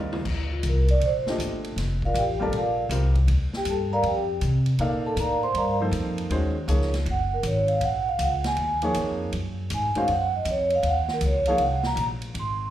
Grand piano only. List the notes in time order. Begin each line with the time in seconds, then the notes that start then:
Already playing: G3 C4 F4 A#4 D5
1.28 D3 A3 G4 C5 D#5
2.40 G3 C4 F4 A#4 D5
2.91 G3 C4 F4 A#4 C5
4.80 A#3 D#4 A4 D5 F5
5.80 F3 A#3 D#4 A4 C5
6.30 D#3 G#3 C#4 F#4 C5
6.68 F3 A#3 D#4 G#4 C#5
8.82 F3 A#3 D#4 G#4 C#5
9.95 D#3 G#3 C#4 F#4 C5
11.47 F3 A#3 D#4 G#4 C#5